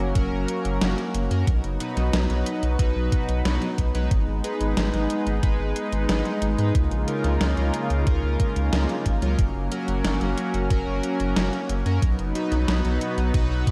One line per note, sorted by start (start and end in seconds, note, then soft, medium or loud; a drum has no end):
0.00 0.13 F#1 medium
0.00 0.11 F#3 medium
0.00 1.45 F#3 medium
0.00 1.45 A#3 medium
0.00 0.11 C#4 medium
0.00 1.45 C#4 loud
0.00 0.11 F#4 medium
0.00 0.12 A#4 medium
0.15 0.29 F#1 loud
0.15 0.77 F#3 medium
0.15 0.77 C#4 medium
0.15 0.77 F#4 medium
0.15 0.77 A#4 loud
0.15 kick loud
0.15 closed hi-hat medium
0.32 0.46 F#1 medium
0.48 closed hi-hat medium
0.65 0.79 F#1 medium
0.65 closed hi-hat medium
0.81 0.95 F#1 loud
0.81 0.99 F#3 medium
0.81 0.99 C#4 medium
0.81 0.99 F#4 medium
0.81 0.99 A#4 loud
0.81 snare loud
0.81 closed hi-hat medium
0.98 closed hi-hat soft
1.14 1.28 F#1 loud
1.14 closed hi-hat medium
1.31 1.44 F#2 medium
1.31 1.45 C#4 medium
1.31 1.45 F#4 medium
1.31 1.45 A#4 loud
1.31 closed hi-hat medium
1.47 1.61 B1 loud
1.47 4.08 F#3 medium
1.47 6.71 B3 medium
1.47 9.34 D#4 loud
1.47 kick loud
1.47 closed hi-hat medium
1.64 1.77 F#1 medium
1.64 closed hi-hat soft
1.80 2.26 B2 medium
1.80 2.26 D#4 medium
1.80 2.26 F#4 medium
1.80 2.26 B4 medium
1.80 closed hi-hat medium
1.97 2.10 B1 medium
1.97 snare soft
1.97 closed hi-hat medium
2.13 2.27 B1 loud
2.13 snare loud
2.13 closed hi-hat medium
2.30 2.43 B1 medium
2.30 2.75 B2 medium
2.30 2.75 D#4 medium
2.30 2.75 F#4 medium
2.30 2.75 B4 medium
2.30 closed hi-hat soft
2.46 closed hi-hat medium
2.63 2.76 B1 medium
2.63 closed hi-hat medium
2.79 2.93 B1 loud
2.79 3.41 B2 loud
2.79 3.41 D#4 medium
2.79 3.41 F#4 medium
2.79 3.41 B4 loud
2.79 kick loud
2.79 closed hi-hat medium
2.96 3.09 B1 medium
3.12 kick loud
3.12 closed hi-hat medium
3.29 3.42 B1 medium
3.29 closed hi-hat medium
3.45 3.59 B1 loud
3.45 3.63 B2 medium
3.45 3.63 D#4 medium
3.45 3.63 F#4 medium
3.45 3.63 B4 loud
3.45 snare loud
3.45 closed hi-hat medium
3.62 closed hi-hat soft
3.78 3.92 B1 loud
3.78 kick medium
3.78 closed hi-hat medium
3.95 4.08 B1 medium
3.95 4.09 G#3 medium
3.95 4.09 D#4 medium
3.95 4.09 F#4 medium
3.95 4.09 B4 loud
3.95 closed hi-hat medium
4.11 4.25 G#1 loud
4.11 9.35 G#3 medium
4.11 kick loud
4.11 closed hi-hat medium
4.28 4.41 G#1 medium
4.44 4.90 G#3 medium
4.44 4.90 D#4 medium
4.44 4.90 G#4 medium
4.44 4.90 B4 medium
4.44 closed hi-hat medium
4.61 4.74 G#1 medium
4.61 closed hi-hat medium
4.77 4.91 G#1 loud
4.77 snare loud
4.77 closed hi-hat medium
4.93 5.07 G#1 medium
4.93 5.39 G#3 medium
4.93 5.39 D#4 medium
4.93 5.39 G#4 medium
4.93 5.39 B4 medium
4.93 closed hi-hat soft
5.10 closed hi-hat medium
5.26 5.40 G#1 medium
5.26 closed hi-hat medium
5.43 5.57 G#1 loud
5.43 6.05 G#3 loud
5.43 6.05 D#4 medium
5.43 6.05 G#4 medium
5.43 6.05 B4 loud
5.43 kick loud
5.43 closed hi-hat medium
5.59 5.73 G#1 medium
5.76 closed hi-hat medium
5.92 6.06 G#1 medium
5.92 closed hi-hat medium
6.09 6.22 G#1 loud
6.09 6.26 G#3 medium
6.09 6.26 D#4 medium
6.09 6.26 G#4 medium
6.09 6.26 B4 loud
6.09 snare loud
6.09 closed hi-hat medium
6.25 closed hi-hat soft
6.42 6.55 G#1 loud
6.42 closed hi-hat medium
6.58 6.72 G#2 medium
6.58 6.73 D#4 medium
6.58 6.73 G#4 medium
6.58 6.73 B4 loud
6.58 closed hi-hat medium
6.75 6.88 C#2 loud
6.75 9.36 C#3 medium
6.75 11.98 A#3 medium
6.75 9.36 F4 medium
6.75 kick loud
6.75 closed hi-hat medium
6.91 7.05 A#1 medium
6.91 closed hi-hat soft
7.08 7.53 C#3 medium
7.08 7.53 C#4 medium
7.08 7.53 F4 medium
7.08 7.53 A#4 medium
7.08 closed hi-hat medium
7.24 7.38 C#2 medium
7.24 snare soft
7.24 closed hi-hat medium
7.41 7.54 C#2 loud
7.41 snare loud
7.41 closed hi-hat medium
7.57 7.71 C#2 medium
7.57 8.03 C#3 medium
7.57 8.03 C#4 medium
7.57 8.03 F4 medium
7.57 8.03 A#4 medium
7.57 closed hi-hat soft
7.74 closed hi-hat medium
7.90 8.04 C#2 medium
7.90 closed hi-hat medium
8.07 8.20 C#2 loud
8.07 8.69 C#3 medium
8.07 8.69 C#4 medium
8.07 8.69 F4 medium
8.07 8.69 A#4 loud
8.07 kick loud
8.07 closed hi-hat medium
8.23 8.37 C#2 medium
8.40 kick loud
8.40 closed hi-hat medium
8.56 8.70 C#2 medium
8.56 closed hi-hat medium
8.72 8.86 C#2 loud
8.72 8.90 C#3 medium
8.72 8.90 C#4 medium
8.72 8.90 F4 medium
8.72 8.90 A#4 loud
8.72 snare loud
8.72 closed hi-hat medium
8.89 closed hi-hat soft
9.06 9.19 G#1 loud
9.06 kick medium
9.06 closed hi-hat medium
9.22 9.36 C#2 medium
9.22 9.37 F#3 medium
9.22 9.37 C#4 medium
9.22 9.37 F4 medium
9.22 9.37 A#4 loud
9.22 closed hi-hat medium
9.38 9.52 F#1 loud
9.38 12.00 F#3 medium
9.38 12.00 C#4 loud
9.38 kick loud
9.38 closed hi-hat medium
9.55 9.69 F#1 medium
9.72 10.17 F#3 medium
9.72 10.17 C#4 medium
9.72 10.17 F#4 medium
9.72 10.17 A#4 medium
9.72 closed hi-hat medium
9.88 10.02 F#1 medium
9.88 closed hi-hat medium
10.04 10.18 F#1 loud
10.04 snare loud
10.04 closed hi-hat medium
10.21 10.35 F#1 medium
10.21 10.66 F#3 medium
10.21 10.67 C#4 medium
10.21 10.66 F#4 medium
10.21 10.66 A#4 medium
10.21 closed hi-hat soft
10.38 closed hi-hat medium
10.54 10.68 F#1 medium
10.54 closed hi-hat medium
10.70 10.84 F#1 loud
10.70 11.32 F#3 loud
10.70 11.32 C#4 medium
10.70 11.32 F#4 medium
10.70 11.32 A#4 loud
10.70 kick loud
10.70 closed hi-hat medium
10.87 11.01 F#1 medium
11.03 closed hi-hat medium
11.20 11.34 F#1 medium
11.20 closed hi-hat medium
11.36 11.50 F#1 loud
11.36 11.54 F#3 medium
11.36 11.54 C#4 medium
11.36 11.54 F#4 medium
11.36 11.54 A#4 loud
11.36 snare loud
11.36 closed hi-hat medium
11.53 closed hi-hat soft
11.69 11.83 F#1 loud
11.69 closed hi-hat medium
11.86 11.99 F#2 medium
11.86 12.00 C#4 medium
11.86 12.00 F#4 medium
11.86 12.00 A#4 loud
11.86 closed hi-hat medium
12.02 12.16 B1 loud
12.02 13.71 F#3 medium
12.02 13.71 B3 medium
12.02 13.71 D#4 medium
12.02 kick loud
12.02 closed hi-hat medium
12.19 12.32 F#1 medium
12.19 closed hi-hat soft
12.35 12.81 B2 medium
12.35 12.81 D#4 medium
12.35 12.81 F#4 medium
12.35 12.81 B4 medium
12.35 closed hi-hat medium
12.52 12.65 B1 medium
12.52 snare soft
12.52 closed hi-hat medium
12.68 12.82 B1 loud
12.68 snare loud
12.68 closed hi-hat medium
12.85 12.98 B1 medium
12.85 13.30 B2 medium
12.85 13.30 D#4 medium
12.85 13.30 F#4 medium
12.85 13.30 B4 medium
12.85 closed hi-hat soft
13.01 closed hi-hat medium
13.18 13.31 B1 medium
13.18 closed hi-hat soft
13.34 13.48 B1 loud
13.34 13.71 B2 medium
13.34 13.71 D#4 medium
13.34 13.71 F#4 medium
13.34 13.71 B4 loud
13.34 kick loud
13.34 closed hi-hat medium
13.50 13.64 B1 medium
13.67 kick loud
13.67 closed hi-hat medium